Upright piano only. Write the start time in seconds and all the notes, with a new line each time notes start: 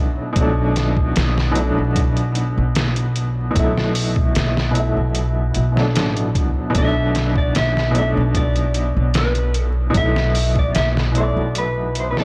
Already playing: B2 F#3 A3 D4 E4
0.33 B2 F#3
0.39 A3 D4
1.52 B2 F#3
1.57 A3 D4
3.51 B2 F#3
3.57 A3 E4
4.71 B2 F#3
4.77 A3 E4
5.72 B2 F#3
5.78 A3 D4
6.70 B2 F#3
6.75 A3 D4
7.91 B2 F#3
7.96 A3 D4
9.90 B2 F#3
9.96 A3 E4
11.12 B2 F#3
11.17 A3 E4
12.12 B2 F#3
12.18 A3